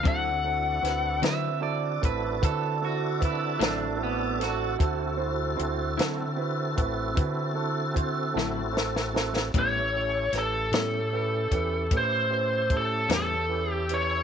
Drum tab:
HH |x---x-x---x-x---x-x---x-|x---x-x---x-x---x-------|x---x-x---x-x---x-x---x-|
SD |----o-o-----------o---o-|------o-----------o-oooo|----o-o-----------o-----|
BD |o---------o-o---o-------|o---------o-o---o-------|o---------o-o---o-------|